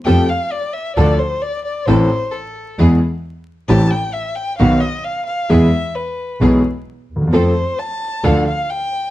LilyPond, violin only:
\new Staff \with { instrumentName = "Violin" } { \time 4/4 \key a \minor \tempo 4 = 132 g''8 f''8 d''8 e''8 d''8 c''8 d''8 d''8 | c''4 a'4 r2 | a''8 g''8 e''8 g''8 f''8 dis''8 f''8 f''8 | e''4 b'4 r2 |
c''4 a''4 f''8 f''8 g''4 | }